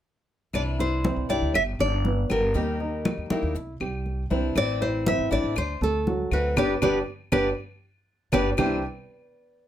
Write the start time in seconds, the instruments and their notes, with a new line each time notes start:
0.53 upright bass C2, steel-string acoustic guitar C3 E3 G3 D4 E4, nylon-string guitar D5, high conga, claves
0.79 grand piano E4 E5, nylon-string guitar C5, high conga
1.04 grand piano C4 C5, high conga
1.16 upright bass C2
1.29 upright bass C2, steel-string acoustic guitar E3 G3 D4 E4, grand piano G4 G5, nylon-string guitar D5
1.41 upright bass D2
1.54 upright bass G1, nylon-string guitar E5, muted steel-string acoustic guitar stroke, high conga, claves
1.79 upright bass G1, grand piano D4 D5, nylon-string guitar D5, high conga
2.05 grand piano B3 B4, high conga
2.30 upright bass G1, steel-string acoustic guitar D3 G3 B3 G4, nylon-string guitar A#4, high conga, claves
2.54 upright bass D#2, steel-string acoustic guitar D#3 G3 A#3 D#4 G4, grand piano G3 G4, high conga
2.80 grand piano D#4 D#5, high conga
3.05 high conga, claves
3.17 upright bass D#2
3.30 upright bass D#2, steel-string acoustic guitar G3 A#3 D#4 G4, grand piano E4 E5, high conga
3.42 upright bass D#2
3.55 upright bass C2, muted steel-string acoustic guitar stroke, high conga
3.80 upright bass C2, grand piano G3 G4, high conga, claves
4.06 high conga
4.30 upright bass C2, steel-string acoustic guitar E3 G3 D4 E4, grand piano C4 C5, high conga
4.55 upright bass A1, steel-string acoustic guitar E3 A3 C4 E4, nylon-string guitar D5, high conga, claves
4.81 grand piano E4 E5, nylon-string guitar C5, high conga
5.06 grand piano C4 C5, nylon-string guitar E5, high conga
5.18 upright bass A1
5.31 upright bass A1, steel-string acoustic guitar A3 C4 E4, grand piano D4 D5, nylon-string guitar D5
5.44 upright bass A1
5.56 upright bass D2, nylon-string guitar C5, muted steel-string acoustic guitar stroke, high conga, claves
5.81 upright bass D2, grand piano A3 A4, nylon-string guitar A4, high conga
6.07 grand piano F#3 F#4, high conga
6.31 upright bass D2, steel-string acoustic guitar A3 C4 F#4, nylon-string guitar B4, claves
6.56 upright bass G1, steel-string acoustic guitar G3 B3 D4, grand piano D4 G4 B4, nylon-string guitar G4 B4 D5, low conga, claves
6.82 upright bass G1, steel-string acoustic guitar G3 B3 D4, grand piano D4 G4 B4, nylon-string guitar G4 B4 D5, low conga, claves
7.32 upright bass G1, steel-string acoustic guitar G3 B3 D4, grand piano D4 G4 B4, nylon-string guitar G4 B4 D5, low conga, claves
8.32 upright bass G1, steel-string acoustic guitar G3 B3 D4, grand piano D4 G4 B4, nylon-string guitar G4 B4 D5, low conga, claves
8.57 upright bass C2, steel-string acoustic guitar C3 E3 G3 D4 E4, grand piano C3 G3 C4 D4 E4 G4, nylon-string guitar C5, low conga, claves